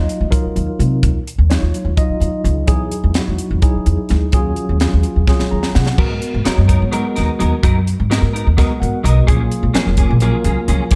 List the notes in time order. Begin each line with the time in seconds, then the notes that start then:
Already playing: F#3 D#4 F4 D#5
0.09 closed hi-hat
0.21 D#2
0.30 F#3 D#4 F4 A#4, kick, closed hi-hat
0.45 muted upright bass stroke
0.56 D#2, closed hi-hat
0.79 C3, closed hi-hat
1.03 D#2, kick, closed hi-hat
1.27 closed hi-hat
1.38 D#2
1.50 F#3 D#4 F4 C#5, snare, closed hi-hat
1.62 D#2
1.74 closed hi-hat
1.85 D#2
1.97 F#3 D#4 F4 D#5, kick, closed hi-hat
2.09 muted upright bass stroke
2.20 D#2, closed hi-hat
2.44 C#2, closed hi-hat
2.67 E2 F#3 D#4 E4 G#4, kick, closed hi-hat
2.91 closed hi-hat
3.04 E2
3.14 F#3 D#4 E4 F#4, snare, closed hi-hat
3.28 E2
3.38 closed hi-hat
3.51 E2
3.62 F#3 D#4 E4 G#4, kick, closed hi-hat
3.75 muted upright bass stroke
3.86 E2, closed hi-hat
4.09 D2, snare, closed hi-hat
4.32 D#2 F#3 C#4 F4 G#4, kick, closed hi-hat
4.56 closed hi-hat
4.69 D#2
4.80 F#3 C#4 F4 G#4, snare, closed hi-hat
4.93 D#2
5.03 closed hi-hat
5.16 D#2
5.27 F#3 C#4 F4 G#4, kick, snare
5.40 muted upright bass stroke, snare
5.51 D#2 A#5
5.63 snare
5.75 C3 F#5, snare
5.87 snare
5.98 G#2 F#3 G#3 B3 D#4 F#4 A#4, kick, crash
6.22 closed hi-hat
6.34 G#2
6.45 F#3 G#3 B3 D#4 F#4 A#4 C#5, muted upright bass stroke, snare, closed hi-hat
6.58 F#2
6.68 B3 D#4 A#4, kick, closed hi-hat
6.82 G#2
6.92 F#3 G#3 B3 D#4 F#4 A#4, closed hi-hat
7.16 D#2 B3 D#4 A#4, snare, closed hi-hat
7.39 D#2 F#3 B3 D#4 A#4, closed hi-hat
7.63 F#2 F#3 B3 D#4 A#4, kick, closed hi-hat
7.87 closed hi-hat
8.00 G#2
8.10 F#3 G#3 B3 D#4 F#4 A#4, snare, closed hi-hat
8.22 G#2
8.33 B3 D#4 A#4, closed hi-hat
8.47 D#2
8.57 F#3 G#3 B3 D#4 F#4 A#4, kick, snare, closed hi-hat
8.80 G#2 F#5, closed hi-hat
9.04 B1 F#3 B3 D#4 A#4 D#5, closed hi-hat
9.27 A#1 F3 F#3 A#3 C#4 F4 G#4, kick, closed hi-hat
9.52 closed hi-hat
9.63 A#1
9.74 F3 F#3 A#3 C#4 F4 G#4 A#4, muted upright bass stroke, snare, closed hi-hat
9.87 F1
9.97 A#3 C#4 G#4, kick, closed hi-hat
10.10 A#1
10.20 F3 F#3 A#3 C#4 F4 G#4 A#4, closed hi-hat
10.44 C#2 A#3 C#4 G#4, closed hi-hat
10.68 C#2 F3 A#3 C#4 G#4, closed hi-hat
10.91 F1 F3 A#3 C#4, kick, closed hi-hat